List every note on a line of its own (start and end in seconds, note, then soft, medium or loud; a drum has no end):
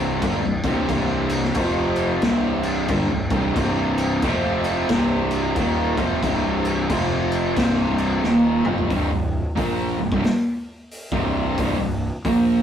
0.00 0.18 C1 loud
0.00 0.21 C2 medium
0.00 0.21 G2 medium
0.00 0.22 C3 loud
0.22 0.41 G1 loud
0.22 0.41 G2 medium
0.22 0.42 D3 medium
0.22 kick loud
0.22 crash medium
0.43 0.62 C1 medium
0.43 0.63 C2 medium
0.43 0.64 G2 medium
0.63 0.87 C1 loud
0.63 0.87 C2 medium
0.63 0.88 G2 medium
0.63 0.89 C3 medium
0.63 kick loud
0.63 crash medium
0.88 1.51 C1 loud
0.88 1.54 C2 loud
0.88 1.55 G2 loud
0.88 1.54 C3 loud
0.88 kick loud
0.88 crash medium
1.29 crash medium
1.44 snare soft
1.54 2.18 F1 medium
1.54 2.21 F2 medium
1.54 2.21 C3 medium
1.54 2.22 F3 medium
1.54 kick loud
1.54 crash loud
1.96 crash medium
2.22 2.85 C1 loud
2.22 2.88 C2 loud
2.22 2.89 G2 loud
2.22 2.89 C3 loud
2.22 kick loud
2.22 snare loud
2.22 crash medium
2.63 crash medium
2.88 3.08 G1 medium
2.88 3.09 G2 loud
2.88 3.09 D3 medium
2.88 kick loud
2.88 crash medium
3.10 3.29 C1 medium
3.10 3.29 C2 medium
3.10 3.30 G2 medium
3.30 3.54 C1 loud
3.30 3.54 C2 medium
3.30 3.55 G2 loud
3.30 3.56 C3 medium
3.30 kick loud
3.30 crash medium
3.56 4.19 C1 loud
3.56 4.24 C2 loud
3.56 4.24 G2 loud
3.56 4.24 C3 loud
3.56 kick loud
3.56 crash medium
3.98 crash medium
4.22 4.85 F1 medium
4.22 4.89 F2 medium
4.22 4.89 C3 medium
4.22 4.90 F3 loud
4.22 kick loud
4.22 crash medium
4.64 crash medium
4.89 5.52 C1 loud
4.89 5.56 C2 medium
4.89 5.56 G2 loud
4.89 5.57 C3 loud
4.89 kick loud
4.89 snare loud
4.89 crash medium
5.31 crash medium
5.56 5.95 D#1 loud
5.56 5.96 D#2 medium
5.56 5.97 A#2 medium
5.56 5.97 D#3 loud
5.56 kick loud
5.56 crash medium
5.97 6.21 F1 loud
5.97 6.22 F2 loud
5.97 6.22 C3 medium
5.97 6.22 F3 loud
5.97 kick loud
5.97 crash medium
6.22 6.86 C1 loud
6.22 6.89 C2 loud
6.22 6.89 G2 loud
6.22 6.90 C3 loud
6.22 kick loud
6.22 crash medium
6.65 crash medium
6.90 7.53 F1 medium
6.90 7.56 F2 medium
6.90 7.57 C3 medium
6.90 7.57 F3 loud
6.90 kick loud
6.90 crash medium
7.32 crash medium
7.57 8.20 C1 loud
7.57 8.23 C2 medium
7.57 8.24 G2 medium
7.57 8.25 C3 loud
7.57 kick loud
7.57 snare loud
7.57 crash medium
7.98 crash medium
8.23 8.62 D#1 loud
8.23 8.64 D#2 medium
8.23 8.64 A#2 medium
8.23 8.65 D#3 medium
8.23 snare medium
8.65 8.89 F1 loud
8.65 8.90 F2 medium
8.65 8.91 C3 medium
8.65 8.91 F3 loud
8.65 mid tom loud
8.78 floor tom loud
8.90 9.10 C1 loud
8.90 9.10 C2 loud
8.90 9.10 G2 loud
8.90 kick loud
8.90 open hi-hat medium
9.11 9.42 C1 medium
9.11 9.40 C2 medium
9.11 9.40 G2 medium
9.56 9.96 A#1 medium
9.56 9.97 A#2 medium
9.56 9.97 F3 medium
9.56 9.98 A#3 medium
9.56 kick loud
9.56 open hi-hat medium
9.99 10.11 C1 medium
9.99 10.11 C2 medium
9.99 10.12 G2 medium
10.12 10.24 C1 loud
10.12 10.24 C2 medium
10.12 10.24 G2 medium
10.12 kick loud
10.24 snare loud
10.24 open hi-hat medium
10.91 open hi-hat medium
11.12 11.55 C1 medium
11.12 11.56 C2 medium
11.12 11.57 G2 loud
11.12 11.58 C3 loud
11.12 kick loud
11.58 11.78 C1 loud
11.58 11.78 C2 loud
11.58 11.78 G2 loud
11.58 kick loud
11.58 open hi-hat medium
11.78 12.10 C1 medium
11.78 12.08 C2 medium
11.78 12.08 G2 medium
12.25 12.62 A#1 medium
12.25 12.62 A#2 medium
12.25 12.62 F3 medium
12.25 12.62 A#3 loud
12.25 kick loud
12.25 open hi-hat medium